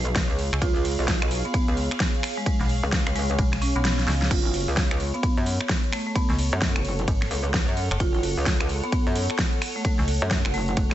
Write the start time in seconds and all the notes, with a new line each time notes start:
Already playing: B1 G#4 C#5 F5
0.07 closed hi-hat
0.16 kick, snare, closed hi-hat, ride
0.30 C#2, closed hi-hat
0.39 open hi-hat
0.53 C#2, finger snap
0.61 C#2 F4, kick, closed hi-hat, ride
0.76 C#2 F4, closed hi-hat
0.85 open hi-hat
0.99 B1
1.08 kick, snare, closed hi-hat, ride
1.22 finger snap, closed hi-hat
1.31 open hi-hat
1.45 B3, closed hi-hat
1.54 B3, kick, closed hi-hat, ride
1.68 C#2, closed hi-hat
1.77 open hi-hat
1.91 finger snap
2.00 kick, snare, closed hi-hat, ride
2.14 closed hi-hat
2.23 finger snap, open hi-hat
2.37 G#3
2.46 G#3, kick, closed hi-hat, ride
2.60 B1, snare, closed hi-hat
2.69 open hi-hat
2.83 C#2
2.92 kick, snare, closed hi-hat, ride
3.07 C#2, finger snap, closed hi-hat
3.16 G#3, open hi-hat
3.30 G#3, closed hi-hat
3.39 B1, kick, closed hi-hat, ride
3.53 finger snap, snare, closed hi-hat
3.62 C#4, open hi-hat
3.76 B1 B3, closed hi-hat
3.85 snare, closed hi-hat, ride
3.99 snare, closed hi-hat
4.08 C#2, snare, open hi-hat
4.22 snare, closed hi-hat
4.31 F#1 F4 A4, kick, closed hi-hat, ride, crash
4.45 F#1 F4, closed hi-hat
4.54 open hi-hat
4.68 C#2
4.77 kick, snare, closed hi-hat, ride
4.91 finger snap, closed hi-hat
5.00 open hi-hat
5.14 B3, closed hi-hat
5.23 B3 F#5, kick, closed hi-hat, ride
5.37 F#2, closed hi-hat
5.46 open hi-hat
5.61 finger snap
5.69 kick, snare, closed hi-hat, ride
5.84 closed hi-hat
5.92 A3, finger snap, open hi-hat
6.07 A3
6.16 B3, kick, closed hi-hat, ride
6.30 C#2, snare, closed hi-hat
6.39 open hi-hat
6.53 F#2
6.62 kick, snare, closed hi-hat, ride
6.76 F#1, finger snap, closed hi-hat
6.85 open hi-hat
6.99 closed hi-hat
7.08 G#1, kick, closed hi-hat, ride
7.22 finger snap, snare, closed hi-hat
7.31 C#2, open hi-hat
7.54 kick, snare, closed hi-hat, ride
7.68 F#2, closed hi-hat
7.77 open hi-hat
7.91 F#1, finger snap
8.00 F#1 F4, kick, closed hi-hat, ride
8.14 F#1 F4, closed hi-hat
8.23 open hi-hat
8.37 C#2
8.46 kick, snare, closed hi-hat, ride
8.61 finger snap, closed hi-hat
8.69 open hi-hat
8.83 B3, closed hi-hat
8.92 B3, kick, closed hi-hat, ride
9.07 F#2, closed hi-hat
9.16 open hi-hat
9.30 finger snap
9.39 kick, snare, closed hi-hat, ride
9.53 closed hi-hat
9.62 finger snap, open hi-hat
9.76 A3
9.85 A3, kick, closed hi-hat, ride
9.99 C#2, snare, closed hi-hat
10.08 open hi-hat
10.22 F#2
10.31 kick, snare, closed hi-hat, ride
10.45 F#1, finger snap, closed hi-hat
10.54 A3, open hi-hat
10.68 A3, closed hi-hat
10.77 F#1, kick, closed hi-hat, ride
10.91 finger snap, closed hi-hat